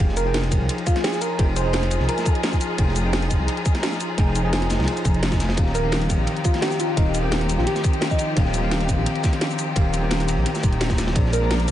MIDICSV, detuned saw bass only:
0, 0, Header, 1, 2, 480
1, 0, Start_track
1, 0, Key_signature, -4, "minor"
1, 0, Tempo, 348837
1, 1911, Time_signature, 4, 2, 24, 8
1, 16116, End_track
2, 0, Start_track
2, 0, Title_t, "Detuned saw bass"
2, 0, Program_c, 0, 39
2, 0, Note_on_c, 0, 29, 106
2, 694, Note_off_c, 0, 29, 0
2, 712, Note_on_c, 0, 29, 103
2, 825, Note_off_c, 0, 29, 0
2, 837, Note_on_c, 0, 36, 89
2, 940, Note_off_c, 0, 36, 0
2, 1912, Note_on_c, 0, 29, 102
2, 2614, Note_off_c, 0, 29, 0
2, 2631, Note_on_c, 0, 29, 101
2, 2744, Note_off_c, 0, 29, 0
2, 2757, Note_on_c, 0, 36, 89
2, 2860, Note_off_c, 0, 36, 0
2, 3832, Note_on_c, 0, 29, 100
2, 4534, Note_off_c, 0, 29, 0
2, 4551, Note_on_c, 0, 29, 100
2, 4664, Note_off_c, 0, 29, 0
2, 4676, Note_on_c, 0, 36, 93
2, 4780, Note_off_c, 0, 36, 0
2, 5752, Note_on_c, 0, 29, 101
2, 6454, Note_off_c, 0, 29, 0
2, 6472, Note_on_c, 0, 29, 105
2, 6585, Note_off_c, 0, 29, 0
2, 6598, Note_on_c, 0, 36, 90
2, 6701, Note_off_c, 0, 36, 0
2, 6952, Note_on_c, 0, 29, 100
2, 7653, Note_off_c, 0, 29, 0
2, 7672, Note_on_c, 0, 27, 100
2, 8374, Note_off_c, 0, 27, 0
2, 8393, Note_on_c, 0, 27, 106
2, 8505, Note_off_c, 0, 27, 0
2, 8516, Note_on_c, 0, 34, 91
2, 8620, Note_off_c, 0, 34, 0
2, 9592, Note_on_c, 0, 27, 103
2, 10294, Note_off_c, 0, 27, 0
2, 10313, Note_on_c, 0, 27, 102
2, 10425, Note_off_c, 0, 27, 0
2, 10439, Note_on_c, 0, 34, 92
2, 10541, Note_off_c, 0, 34, 0
2, 11513, Note_on_c, 0, 27, 108
2, 12214, Note_off_c, 0, 27, 0
2, 12233, Note_on_c, 0, 27, 104
2, 12345, Note_off_c, 0, 27, 0
2, 12358, Note_on_c, 0, 34, 91
2, 12461, Note_off_c, 0, 34, 0
2, 13433, Note_on_c, 0, 27, 108
2, 14134, Note_off_c, 0, 27, 0
2, 14152, Note_on_c, 0, 27, 104
2, 14265, Note_off_c, 0, 27, 0
2, 14278, Note_on_c, 0, 34, 93
2, 14381, Note_off_c, 0, 34, 0
2, 14633, Note_on_c, 0, 27, 100
2, 15334, Note_off_c, 0, 27, 0
2, 15353, Note_on_c, 0, 34, 105
2, 16054, Note_off_c, 0, 34, 0
2, 16073, Note_on_c, 0, 34, 103
2, 16116, Note_off_c, 0, 34, 0
2, 16116, End_track
0, 0, End_of_file